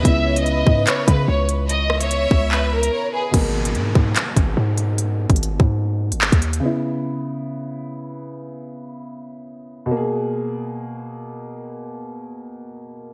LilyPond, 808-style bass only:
\new Staff \with { instrumentName = "808-style bass" } { \clef bass \time 4/4 \key gis \minor \tempo 4 = 146 cis,4. gis,8 r8 cis8 cis,4~ | cis,4. cis,4. r4 | gis,,4 gis,8 gis,8 r8 gis,,8 gis,4~ | gis,8. gis,,8 g,,16 gis,4~ gis,16 g,,8 dis,8. |
r1 | r1 | r1 | r1 | }